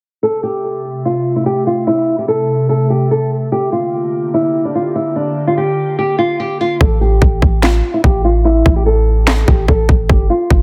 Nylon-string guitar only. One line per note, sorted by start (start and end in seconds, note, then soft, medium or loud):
0.23 0.42 A4 medium
0.43 1.01 G4 medium
1.05 1.34 F4 medium
1.36 1.45 E4 medium
1.46 1.65 G4 medium
1.67 1.86 F4 medium
1.87 2.16 E4 loud
2.18 2.28 G4 medium
2.28 2.67 A4 medium
2.69 2.88 A4 medium
2.90 3.09 G4 medium
3.11 3.30 A4 medium
3.52 3.71 G4 medium
3.72 4.30 F4 medium
4.34 4.63 E4 medium
4.65 4.74 D4 medium
4.75 4.94 F4 medium
4.95 5.14 E4 medium
5.16 5.45 D4 loud
5.47 5.57 F4 medium
5.58 5.96 G4 medium
5.99 6.17 G4 medium
6.19 6.37 F4 medium
6.40 6.58 G4 medium
6.61 6.79 F4 medium
6.81 6.99 A4 medium
7.01 7.59 G4 medium
7.63 7.92 F4 medium
7.94 8.03 E4 medium
8.04 8.23 G4 medium
8.24 8.43 F4 medium
8.45 8.74 E4 loud
8.76 8.85 G4 medium
8.86 9.25 A4 loud
9.27 9.46 A4 medium
9.48 9.67 G4 medium
9.69 9.87 A4 medium
10.10 10.28 G4 medium
10.30 10.62 F4 medium